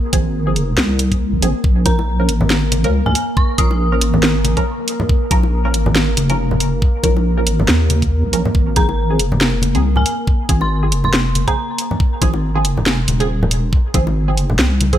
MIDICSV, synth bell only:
0, 0, Header, 1, 2, 480
1, 0, Start_track
1, 0, Key_signature, -5, "minor"
1, 0, Tempo, 431655
1, 1825, Time_signature, 4, 2, 24, 8
1, 16661, End_track
2, 0, Start_track
2, 0, Title_t, "Synth bell"
2, 0, Program_c, 0, 98
2, 2064, Note_on_c, 0, 82, 94
2, 2442, Note_off_c, 0, 82, 0
2, 3404, Note_on_c, 0, 80, 90
2, 3725, Note_off_c, 0, 80, 0
2, 3748, Note_on_c, 0, 85, 93
2, 3965, Note_off_c, 0, 85, 0
2, 3985, Note_on_c, 0, 87, 97
2, 4465, Note_off_c, 0, 87, 0
2, 9748, Note_on_c, 0, 82, 93
2, 10123, Note_off_c, 0, 82, 0
2, 11083, Note_on_c, 0, 80, 94
2, 11405, Note_off_c, 0, 80, 0
2, 11804, Note_on_c, 0, 84, 90
2, 12146, Note_off_c, 0, 84, 0
2, 12284, Note_on_c, 0, 84, 96
2, 12626, Note_off_c, 0, 84, 0
2, 12761, Note_on_c, 0, 82, 96
2, 13241, Note_off_c, 0, 82, 0
2, 16661, End_track
0, 0, End_of_file